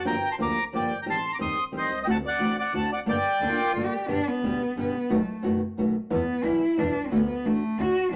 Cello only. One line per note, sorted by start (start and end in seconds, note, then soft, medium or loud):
3.42 3.51 D4 medium
3.50 3.87 F4 medium
3.86 4.09 G4 medium
4.10 4.29 D4 medium
4.27 4.77 B3 medium
4.79 5.15 B3 medium
5.13 5.45 A3 medium
6.12 6.45 B3 medium
6.43 6.80 E4 medium
6.79 7.07 D4 medium
7.05 7.12 C4 medium
7.12 7.47 B3 medium
7.46 7.82 A3 medium
7.81 8.05 F#4 medium
8.13 8.16 D4 medium